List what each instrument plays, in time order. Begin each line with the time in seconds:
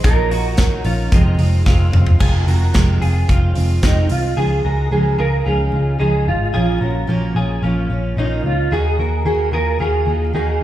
0.03 picked electric bass A#1, steel-string acoustic guitar A#2 F#3 A#3 D#4 F4, clean electric guitar A#4, kick, closed hi-hat
0.31 steel-string acoustic guitar A#3 D#4 F4, clean electric guitar F#4, open hi-hat
0.57 steel-string acoustic guitar F#3 A#3 D#4, kick, snare, closed hi-hat
0.61 steel-string acoustic guitar F4
0.84 picked electric bass A#1, steel-string acoustic guitar A#3 D#4 F4, clean electric guitar C#4, open hi-hat
1.12 picked electric bass F1, steel-string acoustic guitar F2 C3 D#3 G#3 C4 F4, clean electric guitar D#4, kick, closed hi-hat
1.25 clean electric guitar G#4
1.39 picked electric bass F1, steel-string acoustic guitar D#3 G#3 C4 F4, open hi-hat
1.65 picked electric bass F1, steel-string acoustic guitar D#3 G#3 C4 F4, kick, snare
1.92 picked electric bass F1, steel-string acoustic guitar D#3 G#3 C4 F4, mid tom
2.07 floor tom
2.19 picked electric bass F1, steel-string acoustic guitar F2 C3 D#3 G#3 C4 F4, clean electric guitar G#4, kick, crash
2.46 picked electric bass F1, steel-string acoustic guitar D#3 G#3 C4 F4, clean electric guitar F#4 A#4, open hi-hat
2.73 picked electric bass F1, steel-string acoustic guitar F2 C3 D#3 G#3 C4 F4, kick, snare, closed hi-hat
3.00 picked electric bass F1, steel-string acoustic guitar D#3 G#3 C4 F4, clean electric guitar G#4, open hi-hat
3.27 picked electric bass F1, steel-string acoustic guitar D#3 G#3 C4 F4, kick, closed hi-hat
3.54 picked electric bass F1, steel-string acoustic guitar D#3 G#3 C4 F4, open hi-hat
3.82 picked electric bass F1, steel-string acoustic guitar F2 C3 D#3 G#3 C4 F4, clean electric guitar D#4, kick, snare, closed hi-hat
4.09 picked electric bass C2, steel-string acoustic guitar D#3 G#3 C4 F4, clean electric guitar F4, open hi-hat
4.37 picked electric bass C#2, steel-string acoustic guitar C#3 F3 G#3 D#4 F4, clean electric guitar G#4
4.64 picked electric bass C#2, steel-string acoustic guitar G#3 D#4 F4, clean electric guitar F#4 A#4
4.91 picked electric bass C#2, steel-string acoustic guitar C#3 F3 G#3 D#4 F4, clean electric guitar G#4
5.18 picked electric bass C#2, steel-string acoustic guitar G#3 D#4 F4, clean electric guitar G#4 A#4
5.45 picked electric bass C#2, steel-string acoustic guitar F3 G#3 D#4 F4, clean electric guitar C#4 G#4
5.72 picked electric bass C#2, steel-string acoustic guitar G#3 D#4 F4
5.99 picked electric bass C#2, steel-string acoustic guitar C#3 F3 G#3 D#4 F4, clean electric guitar G#4
6.26 picked electric bass G#1, steel-string acoustic guitar G#3 D#4 F4, clean electric guitar F4
6.53 picked electric bass A#1, steel-string acoustic guitar A#2 F3 A#3 C#4 F4, clean electric guitar G#4
6.81 picked electric bass A#1, steel-string acoustic guitar A#3 C#4 F4, clean electric guitar F#4 A#4
7.07 picked electric bass A#1, steel-string acoustic guitar A#2 F3 A#3 C#4 F4
7.35 picked electric bass A#1, steel-string acoustic guitar C#4 F4, clean electric guitar G#4
7.39 steel-string acoustic guitar A#3
7.62 picked electric bass A#1, steel-string acoustic guitar F3 A#3 C#4 F4
7.90 picked electric bass A#1, steel-string acoustic guitar A#3 C#4 F4
8.17 picked electric bass A#1, steel-string acoustic guitar A#2 F3 A#3 C#4 F4, clean electric guitar D#4
8.43 picked electric bass C#2, steel-string acoustic guitar A#3 C#4 F4, clean electric guitar F4
8.71 picked electric bass D#2, steel-string acoustic guitar D#3 A#3 D#4 F#4, clean electric guitar G#4
8.98 picked electric bass D#2, steel-string acoustic guitar A#3 D#4 F#4, clean electric guitar A#4
9.25 picked electric bass D#2, steel-string acoustic guitar D#3 A#3 D#4 F#4, clean electric guitar G#4
9.52 picked electric bass D#2, steel-string acoustic guitar A#3 D#4 F#4, clean electric guitar F4 G#4 A#4
9.79 picked electric bass D#2, steel-string acoustic guitar D#3 A#3 D#4 F#4, clean electric guitar F4 G#4
10.05 picked electric bass D#2, steel-string acoustic guitar A#3 D#4 F#4
10.33 picked electric bass D#2, steel-string acoustic guitar D#3 A#3 D#4 F#4, clean electric guitar G#4